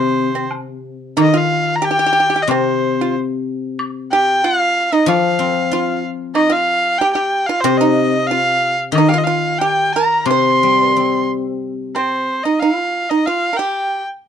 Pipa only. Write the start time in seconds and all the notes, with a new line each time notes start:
Already playing: C4
0.35 C4
1.17 D#4
1.34 F4
1.82 G4
1.91 G4
1.99 G4
2.06 G4
2.13 G4
2.20 G4
2.30 G4
2.36 G4
2.51 C4
3.01 F4
4.13 G4
4.44 F4
4.92 D#4
5.08 F4
5.73 F4
6.35 D#4
6.50 F4
7.01 G4
7.15 G4
7.49 F4
7.64 C4
7.81 D#4
8.31 F4
8.98 D#4
9.09 G4
9.14 F4
9.27 F4
9.61 G4
9.96 A#4
10.31 C5
10.80 B4
10.92 A#4
11.96 C4
12.45 D#4
12.62 F4
13.11 D#4
13.27 F4
13.53 A#4
13.59 G4